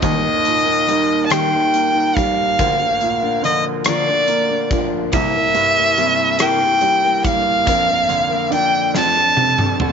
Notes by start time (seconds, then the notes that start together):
0.02 D#2 D#3 G3 A#3 D#4 A#4 D#5, kick, closed hi-hat
0.23 A#3 D#4 A#4
0.45 A#2, closed hi-hat
0.66 A#3 D#4 A#4
0.87 D#3 G3 A#3 D#4 A#4, closed hi-hat
1.26 A5
1.30 D#3 G3 A#3 D#4 A#4 G5, cross-stick, closed hi-hat
1.52 A#3 D#4 A#4
1.74 A#3, closed hi-hat
1.94 A#3 D#4 A#4
2.16 G3 A#3 D#4 A#4 F5, kick, closed hi-hat
2.58 D2 D3 F3 A#3 D4 A#4, kick, closed hi-hat
2.79 A#3 D4 A#4
3.01 A#2, closed hi-hat
3.22 A#3 D4 A#4
3.42 D3 F3 A#3 A#4 D#5, closed hi-hat
3.84 D3 F3 A#3 D4 A#4 D5, cross-stick, closed hi-hat
4.08 A#3 D4 A#4
4.28 A#3, closed hi-hat
4.49 A#3 D4 A#4
4.70 F3 A#3 D4 A#4, kick, closed hi-hat
5.13 C2 C3 G3 A#3 E4 A#4 E5, kick, closed hi-hat
5.35 A#3 E4 A#4
5.54 G2, closed hi-hat
5.76 A#3 E4 A#4
5.98 C3 G3 A#3 E4 A#4, closed hi-hat
6.39 C3 E3 G3 A#3 E4 A#4 G5, cross-stick, closed hi-hat
6.61 A#3 E4 A#4
6.81 G3, closed hi-hat
7.04 A#3 E4 A#4
7.24 E3 G3 A#3 A#4 F5, kick, closed hi-hat
7.65 F2 F3 A#3 D4 A#4, kick, closed hi-hat
7.88 A#3 D4 A#4
8.09 D3, cross-stick, closed hi-hat
8.30 A#3 D4 A#4
8.50 F3 A#3 D4 A#4, closed hi-hat
8.55 G5
8.94 F2 F3 A3 C4 D4 A4 A5, snare
9.17 C4 D4 A4
9.37 C3, high tom
9.58 C4 D4 A4, mid tom
9.80 D3 A3 C4 D4 A4, mid tom